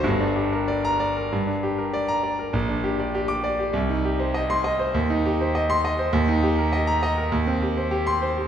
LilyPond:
\new Staff \with { instrumentName = "Grand piano" } { \time 2/4 \key g \minor \tempo 4 = 100 << { r4 r16 bes''8 r16 | r4 r16 bes''8 r16 | r4 r16 d'''8 r16 | r4 r16 c'''8 r16 |
r4 r16 c'''8 r16 | \key ees \lydian r4 r16 bes''8 r16 | r4 r16 c'''8 r16 | } \\ { <g,, g,>16 d'16 g'16 bes'16 d''8 d''16 bes'16 | g,16 d'16 g'16 bes'16 d''8 d''16 bes'16 | bes,,16 d'16 g'16 d''16 g'8 d''16 g'16 | c,16 ees'16 g'16 c''16 ees''8 ees''16 c''16 |
ees,16 ees'16 g'16 c''16 ees''8 ees''16 c''16 | ees,16 ees'16 g'16 bes'16 ees''8 ees''16 bes'16 | ees,16 c'16 g'16 c''16 g'8 c''16 g'16 | } >> }